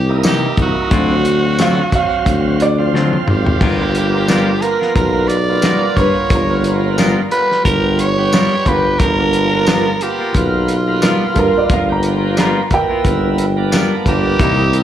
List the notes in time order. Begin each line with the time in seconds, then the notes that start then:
Already playing: C2 G4
0.09 A#3 D#4 E4
0.23 C3 E3 A#3 D#4, snare, closed hi-hat, tambourine
0.28 G4
0.57 C2, kick, closed hi-hat
0.62 F#4
0.91 D2 D3 F#3 C4 F4, kick, closed hi-hat
1.10 F#3 C4 F5
1.25 closed hi-hat
1.58 D3 F#3 C4 F4 F5, snare, closed hi-hat, tambourine
1.92 F#3 C4 F5, kick, closed hi-hat
2.26 D2, kick, closed hi-hat
2.60 D5, closed hi-hat
2.78 F3 C4 F4
2.94 D3 F#3 C4 F4, snare
3.13 high tom
3.27 G#1 G4, mid tom
3.46 floor tom
3.61 G1 G3 B3 F4 A#4, kick, crash
3.79 A#3 B3 F4
3.95 F4 A#4, closed hi-hat
4.28 G3 B3 F4 A#4, snare, closed hi-hat, tambourine
4.62 A#3 B3 F4 A#4, closed hi-hat
4.80 B3 F4 A#4, snare
4.95 B1 A#4, kick, closed hi-hat
5.28 D5, closed hi-hat
5.49 A#3 B3 F4
5.62 G3 B3 F4 A#4, snare, closed hi-hat, tambourine
5.96 G2 B3 F4 B4 C#5, kick, closed hi-hat
6.30 G1 B3 F4 A#4, kick, closed hi-hat
6.49 A#3 B3 F4
6.64 F4 A#4, closed hi-hat
6.98 G3 B3 F4 A#4, snare, closed hi-hat, tambourine
7.31 G3 B3 F4 B4, closed hi-hat
7.51 snare
7.65 G1 A#4, kick, closed hi-hat
7.99 C#5, closed hi-hat
8.18 G3 B3 G4
8.32 G3 B3 F4 A#4, snare, closed hi-hat, tambourine
8.66 G1 B3 F4 A#4 B4, kick, closed hi-hat
8.99 G1 B3 F4 A#4, kick, closed hi-hat
9.18 A#3 B3 D4
9.33 F4 A#4, closed hi-hat
9.66 G3 B3 F4 A#4, snare, closed hi-hat, tambourine
10.01 A#3 B3 F4 G4, closed hi-hat
10.19 B3 F4 A#4
10.34 B1 F4, kick, closed hi-hat
10.68 closed hi-hat
10.88 A#3 B3 F4
11.02 G3 B3 F4 A#4, snare, closed hi-hat, tambourine
11.34 G2 B3 F4 A4 A#4, kick, closed hi-hat
11.39 A#4
11.58 D5
11.70 G1 B3 F4 A#4 F5, kick, closed hi-hat
11.89 A#3 B3 G4 A#5
12.03 F4 A#4, closed hi-hat
12.37 G3 B3 F4 A#4 A#5, snare, closed hi-hat, tambourine
12.71 A#3 B3 E4 A#4 G5, kick, closed hi-hat
12.89 B3 F4 A#4
13.05 G1, kick, closed hi-hat
13.38 closed hi-hat
13.57 A#3 B3 D4
13.72 G3 B3 F4 A#4, snare, closed hi-hat, tambourine
14.05 G1 B3 F4 G4 A#4, kick, closed hi-hat
14.39 C2 C3 E3 A#3 D#4 E4 A#4, kick, closed hi-hat
14.57 A#3 D#4 E4
14.73 E3 A4, closed hi-hat